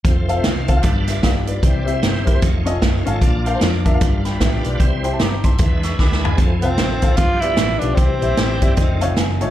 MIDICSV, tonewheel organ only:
0, 0, Header, 1, 2, 480
1, 0, Start_track
1, 0, Key_signature, -1, "major"
1, 0, Tempo, 396563
1, 54, Time_signature, 4, 2, 24, 8
1, 11504, End_track
2, 0, Start_track
2, 0, Title_t, "Tonewheel organ"
2, 0, Program_c, 0, 16
2, 49, Note_on_c, 0, 65, 66
2, 57, Note_on_c, 0, 57, 67
2, 61, Note_on_c, 0, 72, 77
2, 62, Note_on_c, 0, 60, 64
2, 528, Note_off_c, 0, 72, 0
2, 531, Note_on_c, 0, 77, 63
2, 809, Note_off_c, 0, 77, 0
2, 811, Note_on_c, 0, 69, 63
2, 980, Note_off_c, 0, 65, 0
2, 990, Note_on_c, 0, 55, 70
2, 991, Note_on_c, 0, 71, 78
2, 992, Note_on_c, 0, 62, 66
2, 994, Note_on_c, 0, 65, 65
2, 996, Note_off_c, 0, 57, 0
2, 998, Note_off_c, 0, 60, 0
2, 1274, Note_off_c, 0, 69, 0
2, 1473, Note_on_c, 0, 76, 65
2, 1760, Note_off_c, 0, 76, 0
2, 1774, Note_on_c, 0, 74, 55
2, 1933, Note_off_c, 0, 62, 0
2, 1941, Note_off_c, 0, 55, 0
2, 1941, Note_off_c, 0, 71, 0
2, 1943, Note_off_c, 0, 65, 0
2, 1948, Note_on_c, 0, 62, 51
2, 1958, Note_on_c, 0, 72, 77
2, 1959, Note_on_c, 0, 60, 64
2, 1960, Note_on_c, 0, 55, 69
2, 2016, Note_on_c, 0, 64, 65
2, 2030, Note_off_c, 0, 62, 0
2, 2235, Note_off_c, 0, 74, 0
2, 2905, Note_off_c, 0, 60, 0
2, 2905, Note_off_c, 0, 72, 0
2, 2906, Note_off_c, 0, 55, 0
2, 2923, Note_on_c, 0, 63, 64
2, 2924, Note_on_c, 0, 65, 64
2, 2925, Note_on_c, 0, 73, 77
2, 2926, Note_on_c, 0, 57, 68
2, 2934, Note_off_c, 0, 64, 0
2, 3382, Note_on_c, 0, 77, 68
2, 3673, Note_off_c, 0, 77, 0
2, 3683, Note_on_c, 0, 81, 61
2, 3867, Note_off_c, 0, 63, 0
2, 3867, Note_off_c, 0, 65, 0
2, 3868, Note_off_c, 0, 73, 0
2, 3869, Note_off_c, 0, 57, 0
2, 3878, Note_on_c, 0, 58, 73
2, 3881, Note_on_c, 0, 65, 62
2, 3885, Note_on_c, 0, 74, 76
2, 3889, Note_on_c, 0, 62, 64
2, 4148, Note_off_c, 0, 81, 0
2, 4174, Note_off_c, 0, 74, 0
2, 4188, Note_on_c, 0, 72, 57
2, 4364, Note_off_c, 0, 72, 0
2, 4387, Note_on_c, 0, 74, 65
2, 4657, Note_off_c, 0, 74, 0
2, 4681, Note_on_c, 0, 77, 61
2, 4824, Note_off_c, 0, 58, 0
2, 4826, Note_off_c, 0, 65, 0
2, 4830, Note_off_c, 0, 62, 0
2, 4870, Note_on_c, 0, 62, 63
2, 4874, Note_on_c, 0, 65, 64
2, 4874, Note_on_c, 0, 71, 79
2, 4875, Note_on_c, 0, 55, 69
2, 5128, Note_off_c, 0, 77, 0
2, 5793, Note_off_c, 0, 55, 0
2, 5801, Note_off_c, 0, 62, 0
2, 5803, Note_off_c, 0, 65, 0
2, 5803, Note_off_c, 0, 71, 0
2, 5807, Note_on_c, 0, 55, 71
2, 5808, Note_on_c, 0, 64, 64
2, 5809, Note_on_c, 0, 72, 75
2, 5810, Note_on_c, 0, 60, 64
2, 6286, Note_on_c, 0, 79, 59
2, 6565, Note_off_c, 0, 79, 0
2, 6580, Note_on_c, 0, 76, 59
2, 6750, Note_off_c, 0, 55, 0
2, 6750, Note_off_c, 0, 64, 0
2, 6751, Note_off_c, 0, 60, 0
2, 6751, Note_off_c, 0, 72, 0
2, 6780, Note_on_c, 0, 64, 62
2, 6782, Note_on_c, 0, 56, 70
2, 6785, Note_on_c, 0, 70, 61
2, 6786, Note_on_c, 0, 62, 62
2, 6840, Note_on_c, 0, 71, 77
2, 6848, Note_off_c, 0, 70, 0
2, 7037, Note_off_c, 0, 76, 0
2, 7262, Note_on_c, 0, 76, 62
2, 7534, Note_off_c, 0, 76, 0
2, 7544, Note_on_c, 0, 80, 58
2, 7711, Note_on_c, 0, 60, 66
2, 7711, Note_on_c, 0, 67, 64
2, 7716, Note_off_c, 0, 64, 0
2, 7716, Note_on_c, 0, 57, 63
2, 7717, Note_off_c, 0, 56, 0
2, 7717, Note_on_c, 0, 53, 76
2, 7719, Note_off_c, 0, 62, 0
2, 7747, Note_off_c, 0, 71, 0
2, 7775, Note_on_c, 0, 69, 77
2, 7791, Note_off_c, 0, 67, 0
2, 7999, Note_off_c, 0, 80, 0
2, 8662, Note_off_c, 0, 60, 0
2, 8665, Note_off_c, 0, 53, 0
2, 8665, Note_off_c, 0, 57, 0
2, 8670, Note_on_c, 0, 62, 57
2, 8673, Note_on_c, 0, 59, 56
2, 8674, Note_on_c, 0, 67, 66
2, 8679, Note_on_c, 0, 53, 60
2, 8695, Note_off_c, 0, 69, 0
2, 9622, Note_off_c, 0, 62, 0
2, 9623, Note_off_c, 0, 59, 0
2, 9624, Note_off_c, 0, 67, 0
2, 9626, Note_off_c, 0, 53, 0
2, 9636, Note_on_c, 0, 60, 55
2, 9643, Note_on_c, 0, 52, 60
2, 9643, Note_on_c, 0, 55, 57
2, 9647, Note_on_c, 0, 67, 71
2, 10585, Note_off_c, 0, 60, 0
2, 10588, Note_off_c, 0, 55, 0
2, 10589, Note_off_c, 0, 52, 0
2, 10590, Note_off_c, 0, 67, 0
2, 10610, Note_on_c, 0, 51, 74
2, 10611, Note_on_c, 0, 49, 65
2, 10614, Note_on_c, 0, 56, 54
2, 10618, Note_on_c, 0, 65, 84
2, 10679, Note_on_c, 0, 57, 71
2, 10683, Note_off_c, 0, 56, 0
2, 11504, Note_off_c, 0, 49, 0
2, 11504, Note_off_c, 0, 51, 0
2, 11504, Note_off_c, 0, 57, 0
2, 11504, Note_off_c, 0, 65, 0
2, 11504, End_track
0, 0, End_of_file